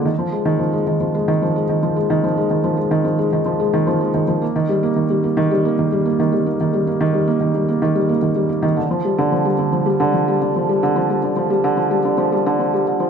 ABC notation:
X:1
M:4/4
L:1/16
Q:1/4=110
K:Eb
V:1 name="Felt piano" clef=bass
E, F, A, E, F, A, E, F, A, E, F, A, E, F, A, E, | F, A, E, F, A, E, F, A, E, F, A, E, F, A, E, F, | B, E, G, B, E, G, B, E, G, B, E, G, B, E, G, B, | E, G, B, E, G, B, E, G, B, E, G, B, E, G, B, E, |
D, F, G, D, F, G, D, F, G, D, F, G, D, F, G, D, | F, G, D, F, G, D, F, G, D, F, G, D, F, G, D, F, |]